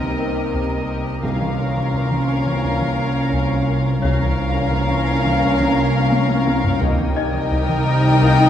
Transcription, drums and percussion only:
0.02 taiko mid
0.54 taiko
1.24 taiko
1.41 taiko mid
1.77 taiko mid
1.94 taiko
2.11 taiko mid
2.46 taiko mid
2.64 taiko
2.81 taiko mid
3.34 taiko
4.03 taiko
4.21 taiko mid
4.56 taiko mid
4.73 taiko
4.90 taiko mid
5.25 taiko mid
5.42 taiko
5.60 taiko mid
6.12 taiko high
6.29 taiko high
6.47 taiko high
6.64 taiko low
6.82 taiko
6.99 taiko mid
7.34 taiko mid
7.51 taiko
7.69 taiko mid
8.04 taiko mid
8.22 taiko
8.39 taiko mid

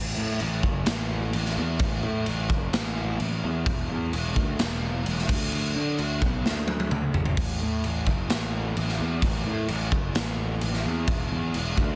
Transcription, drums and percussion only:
0.40 crash
0.63 kick
0.86 snare, crash
1.33 crash
1.46 snare
1.79 kick, crash
2.26 crash
2.50 kick
2.73 snare, crash
3.20 crash
3.66 kick, crash
4.13 crash
4.36 kick
4.59 snare, crash
5.06 crash
5.18 snare
5.29 kick, crash
5.52 crash
5.98 crash
6.22 kick
6.46 snare
6.68 high tom
6.80 high tom
6.91 mid tom
7.14 floor tom
7.25 floor tom
7.37 kick, crash
7.84 crash
8.07 kick
8.30 snare, crash
8.77 crash
8.88 snare
9.22 kick, crash
9.68 crash
9.92 kick
10.15 snare, crash
10.61 crash
10.73 snare
11.07 kick, crash
11.54 crash
11.77 kick

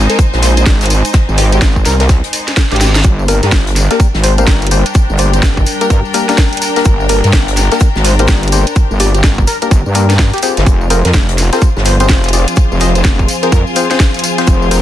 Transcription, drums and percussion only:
0.09 snare, closed hi-hat, tambourine
0.19 kick, closed hi-hat, tambourine, shaker
0.33 snare, tambourine
0.43 snare, open hi-hat, tambourine, shaker
0.57 closed hi-hat, tambourine
0.66 kick, snare, closed hi-hat, tambourine, shaker
0.81 snare, closed hi-hat, tambourine, shaker
0.86 closed hi-hat
0.90 open hi-hat, tambourine
1.05 closed hi-hat, tambourine, shaker
1.13 kick, snare, closed hi-hat, tambourine, shaker
1.29 tambourine
1.38 open hi-hat, tambourine, shaker
1.52 closed hi-hat, tambourine
1.61 kick, snare, closed hi-hat, tambourine, shaker
1.76 kick, tambourine
1.85 snare, open hi-hat, tambourine, shaker
2.00 snare, closed hi-hat, tambourine
2.09 kick, snare, closed hi-hat, tambourine, shaker
2.24 closed hi-hat, tambourine
2.33 open hi-hat, tambourine, shaker
2.48 snare, closed hi-hat, tambourine
2.56 kick, snare, closed hi-hat, tambourine, shaker
2.72 snare, closed hi-hat, tambourine
2.76 closed hi-hat
2.81 snare, open hi-hat, tambourine, shaker
2.95 snare, closed hi-hat, tambourine, shaker
3.04 kick, closed hi-hat, tambourine, shaker
3.19 tambourine
3.28 open hi-hat, tambourine, shaker
3.42 snare, closed hi-hat, tambourine
3.52 kick, snare, closed hi-hat, tambourine, shaker
3.67 closed hi-hat, tambourine
3.76 snare, open hi-hat, tambourine, shaker
3.90 snare, closed hi-hat, tambourine
4.00 kick, closed hi-hat, tambourine, shaker
4.14 snare, tambourine
4.24 open hi-hat, tambourine, shaker
4.38 closed hi-hat, tambourine
4.47 kick, snare, closed hi-hat, tambourine, shaker
4.62 snare, closed hi-hat, tambourine
4.67 closed hi-hat
4.71 open hi-hat, tambourine, shaker
4.86 closed hi-hat, tambourine
4.95 kick, closed hi-hat, tambourine, shaker
5.10 tambourine
5.18 open hi-hat, tambourine, shaker
5.33 closed hi-hat, tambourine
5.43 kick, snare, closed hi-hat, tambourine, shaker
5.57 kick, tambourine
5.66 open hi-hat, tambourine, shaker
5.81 closed hi-hat, tambourine
5.90 kick, closed hi-hat, tambourine, shaker
6.05 tambourine
6.14 open hi-hat, tambourine, shaker
6.29 snare, closed hi-hat, tambourine
6.37 kick, snare, closed hi-hat, tambourine, shaker
6.53 snare, closed hi-hat, tambourine
6.57 closed hi-hat
6.62 open hi-hat, tambourine, shaker
6.76 snare, closed hi-hat, tambourine
6.85 kick, closed hi-hat, tambourine, shaker
7.00 tambourine
7.09 open hi-hat, tambourine, shaker
7.23 snare, closed hi-hat, tambourine
7.33 kick, snare, closed hi-hat, tambourine, shaker
7.48 closed hi-hat, tambourine
7.57 snare, open hi-hat, tambourine, shaker
7.72 snare, closed hi-hat, tambourine
7.80 kick, closed hi-hat, tambourine, shaker
7.96 snare, tambourine
8.05 open hi-hat, tambourine, shaker
8.19 closed hi-hat, tambourine
8.28 kick, snare, closed hi-hat, tambourine, shaker
8.43 snare, closed hi-hat, tambourine
8.48 closed hi-hat
8.52 open hi-hat, tambourine, shaker
8.67 closed hi-hat, tambourine
8.76 kick, closed hi-hat, tambourine, shaker
8.91 tambourine
9.00 open hi-hat, tambourine, shaker
9.15 closed hi-hat, tambourine
9.23 kick, snare, closed hi-hat, tambourine, shaker
9.38 kick, tambourine
9.47 open hi-hat, tambourine, shaker
9.62 closed hi-hat, tambourine
9.71 kick, closed hi-hat, tambourine, shaker
9.86 tambourine
9.95 open hi-hat, tambourine, shaker
10.10 snare, closed hi-hat, tambourine
10.19 kick, snare, closed hi-hat, tambourine, shaker
10.33 snare, closed hi-hat, tambourine
10.38 closed hi-hat
10.42 open hi-hat, tambourine, shaker
10.57 snare, closed hi-hat, tambourine
10.66 kick, closed hi-hat, tambourine, shaker
10.81 tambourine
10.90 open hi-hat, tambourine, shaker
11.05 snare, closed hi-hat, tambourine
11.14 kick, snare, closed hi-hat, tambourine, shaker
11.29 closed hi-hat, tambourine
11.38 snare, open hi-hat, tambourine, shaker
11.52 snare, closed hi-hat, tambourine
11.62 kick, closed hi-hat, tambourine, shaker
11.77 snare, tambourine
11.85 open hi-hat, tambourine, shaker
12.00 closed hi-hat, tambourine
12.09 kick, snare, closed hi-hat, tambourine, shaker
12.24 snare, closed hi-hat, tambourine
12.29 closed hi-hat
12.33 open hi-hat, tambourine, shaker
12.48 closed hi-hat, tambourine
12.57 kick, closed hi-hat, tambourine, shaker
12.72 tambourine
12.80 open hi-hat, tambourine, shaker
12.95 closed hi-hat, tambourine
13.04 kick, snare, closed hi-hat, tambourine, shaker
13.19 kick, tambourine
13.28 open hi-hat, tambourine, shaker
13.43 closed hi-hat, tambourine
13.52 kick, closed hi-hat, tambourine, shaker
13.67 tambourine
13.76 open hi-hat, tambourine, shaker
13.91 snare, closed hi-hat, tambourine
14.00 kick, snare, closed hi-hat, tambourine, shaker
14.14 snare, closed hi-hat, tambourine
14.19 closed hi-hat
14.24 open hi-hat, tambourine, shaker
14.38 snare, closed hi-hat, tambourine
14.47 kick, closed hi-hat, tambourine, shaker
14.62 tambourine
14.71 open hi-hat, tambourine, shaker

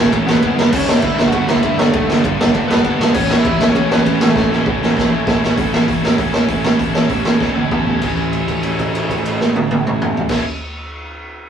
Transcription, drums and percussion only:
0.05 kick
0.13 kick, ride
0.28 snare
0.35 kick
0.42 kick, ride
0.59 snare
0.72 kick, crash
0.89 snare
1.02 kick, ride
1.19 snare
1.26 kick
1.32 kick, ride
1.48 snare
1.56 kick
1.63 kick, ride
1.79 snare
1.93 kick, ride
2.10 snare
2.24 kick, ride
2.41 snare
2.47 kick
2.55 kick, ride
2.71 snare
2.77 kick
2.84 kick, ride
3.01 snare
3.14 kick, crash
3.31 snare
3.45 kick, ride
3.61 snare
3.68 kick
3.75 kick, ride
3.92 snare
3.98 kick
4.06 kick, ride
4.21 snare
4.36 kick, snare
4.52 snare
4.66 kick
4.83 snare
4.97 kick, snare
5.27 kick, snare
5.43 snare
5.57 kick, open hi-hat
5.74 snare
5.88 kick, open hi-hat
6.05 snare
6.18 kick, open hi-hat
6.34 snare
6.48 kick, open hi-hat
6.64 snare
6.79 kick, open hi-hat
6.95 snare
7.09 kick, open hi-hat
7.25 snare
7.40 kick, snare
7.56 high tom
7.71 kick, mid tom
7.86 floor tom
8.02 kick, crash
8.17 kick, crash
8.33 crash
8.48 kick, crash
8.63 crash
8.79 kick, crash
8.95 crash
9.10 kick, crash
9.25 crash
9.40 snare
9.56 high tom
9.71 high tom
9.87 mid tom
10.02 mid tom
10.17 floor tom
10.29 kick, snare, crash

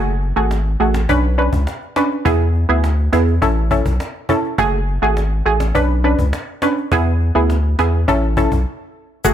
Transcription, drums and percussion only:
0.07 cajon slap
0.22 cajon slap
0.36 cajon slap
0.51 cajon slap
0.65 cajon slap
0.80 cajon slap
0.94 cajon slap
1.09 cajon bass
1.24 cajon slap
1.38 cajon slap
1.53 cajon bass
1.67 cajon slap
1.82 cajon slap
1.96 cajon slap
2.11 cajon slap
2.25 cajon bass
2.40 cajon slap
2.54 cajon slap
2.69 cajon slap
2.84 cajon slap
2.98 cajon slap
3.13 cajon slap
3.27 cajon slap
3.42 cajon bass
3.57 cajon slap
3.71 cajon bass
3.86 cajon bass
4.00 cajon slap
4.15 cajon slap
4.29 cajon bass
4.44 cajon slap
4.58 cajon bass
4.73 cajon slap
4.87 cajon slap
5.02 cajon slap
5.17 cajon slap
5.31 cajon slap
5.46 cajon slap
5.60 cajon slap
5.75 cajon bass
5.90 cajon slap
6.04 cajon slap
6.19 cajon bass
6.33 cajon slap
6.48 cajon slap
6.62 cajon slap
6.77 cajon slap
6.92 cajon bass
7.06 cajon slap
7.20 cajon slap
7.35 cajon slap
7.50 cajon slap
7.64 cajon slap
7.79 cajon slap
7.94 cajon slap
8.08 cajon bass
8.23 cajon slap
8.37 cajon bass
8.52 cajon bass
9.25 cajon bass, shaker

